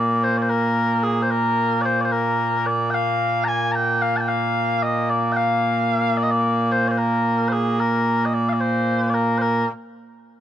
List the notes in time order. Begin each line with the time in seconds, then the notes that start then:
Already playing: A#2 A#3 D5
0.24 C5
0.37 D5
0.42 C5
0.49 A#4
1.03 G#4
1.22 C5
1.31 A#4
1.81 C5 D5
2.01 D5
2.05 C5
2.12 A#4
2.66 D5
2.90 F5 G5
3.44 G#5 A#5
3.72 G5 A#5
4.02 F5
4.16 G5 A5
4.28 F5
4.83 D#5
5.10 D5
5.32 G5
5.36 F5
6.17 D5
6.23 D#5
6.31 D5
6.72 C5
6.88 C5 D5
6.98 A#4
7.48 C5
7.52 G#4
7.80 A#4
8.25 D#5
8.34 D5
8.49 F5
8.53 D5
8.60 C5
9.09 D5
9.14 A#4
9.38 A#4 C5